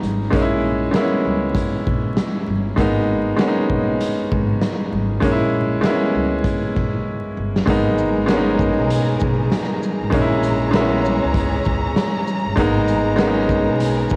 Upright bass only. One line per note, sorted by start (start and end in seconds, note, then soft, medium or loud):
0.03 0.28 G#1 medium
0.33 0.84 A#1 loud
1.25 1.50 C#2 loud
1.87 2.12 A#1 medium
2.47 2.73 G1 loud
2.78 3.29 G#1 loud
3.70 3.95 A#1 medium
4.32 4.57 G#1 loud
4.92 5.18 G#1 medium
5.23 5.74 A#1 loud
6.15 6.40 C#2 medium
6.77 7.02 A#1 medium
7.37 7.63 G1 loud
7.68 8.75 G#1 loud
8.79 9.14 B1 medium
9.22 9.47 B1 medium
10.01 10.11 G#1 medium
10.13 11.19 A#1 loud
11.24 11.59 C#2 loud
11.67 11.92 C#2 medium
12.46 12.56 G1 medium
12.58 13.64 G#1 loud
13.69 14.04 B1 medium
14.12 14.16 B1 medium